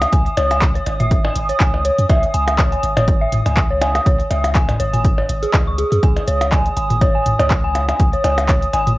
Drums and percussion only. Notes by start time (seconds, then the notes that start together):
0.02 closed hi-hat, percussion blips
0.13 kick, closed hi-hat
0.26 closed hi-hat
0.37 closed hi-hat, percussion blips
0.51 closed hi-hat, percussion blips
0.62 kick, clap, closed hi-hat
0.75 closed hi-hat
0.86 closed hi-hat, percussion blips
1.00 closed hi-hat, mid tom
1.11 kick, closed hi-hat
1.25 percussion blips
1.36 closed hi-hat
1.49 closed hi-hat
1.60 kick, clap, closed hi-hat
1.74 percussion blips
1.85 closed hi-hat
1.98 closed hi-hat
2.09 kick, closed hi-hat, percussion blips
2.23 closed hi-hat
2.34 closed hi-hat
2.48 closed hi-hat, percussion blips
2.59 kick, clap, closed hi-hat, percussion blips
2.72 closed hi-hat
2.83 closed hi-hat
2.97 closed hi-hat, mid tom, percussion blips
3.08 kick, closed hi-hat
3.32 closed hi-hat, mid tom
3.46 closed hi-hat, percussion blips
3.57 kick, clap, closed hi-hat
3.82 closed hi-hat, percussion blips
3.95 closed hi-hat, percussion blips
4.06 kick, closed hi-hat
4.20 closed hi-hat
4.31 closed hi-hat, percussion blips
4.44 closed hi-hat, percussion blips
4.55 kick, clap, closed hi-hat
4.69 closed hi-hat, mid tom, percussion blips
4.80 closed hi-hat
4.93 closed hi-hat, mid tom
5.05 kick, closed hi-hat
5.18 percussion blips
5.29 closed hi-hat
5.43 closed hi-hat
5.54 kick, clap, closed hi-hat, percussion blips
5.78 closed hi-hat
5.92 closed hi-hat
6.03 kick, closed hi-hat
6.16 closed hi-hat, percussion blips
6.27 closed hi-hat
6.41 closed hi-hat, percussion blips
6.52 kick, clap, closed hi-hat, percussion blips
6.66 closed hi-hat
6.77 closed hi-hat
6.90 closed hi-hat, mid tom
7.01 kick, closed hi-hat, percussion blips
7.26 closed hi-hat, mid tom
7.39 closed hi-hat, percussion blips
7.50 kick, clap, closed hi-hat
7.75 closed hi-hat, percussion blips
7.89 closed hi-hat, percussion blips
8.00 kick, closed hi-hat
8.13 closed hi-hat
8.24 closed hi-hat, percussion blips
8.38 closed hi-hat, percussion blips
8.49 kick, clap, closed hi-hat
8.62 closed hi-hat
8.73 closed hi-hat, percussion blips
8.87 closed hi-hat, mid tom